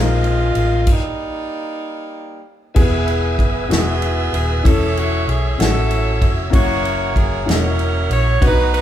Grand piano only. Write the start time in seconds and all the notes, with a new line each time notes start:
Already playing: G#3 A#3 C4 F4 A#4
0.00 D#4
2.75 E3 B3 E4 G#4
3.69 B3 E4 F#4
4.63 E3 C#4 E4 A4
5.58 C#4 E4 F#4
6.50 A#3 C#4 E4 F#4 C#5
7.45 A#3 C#4 E4 F#4 C#5
7.54 D#5
8.41 B2 D4 F#4 B4
8.47 D#4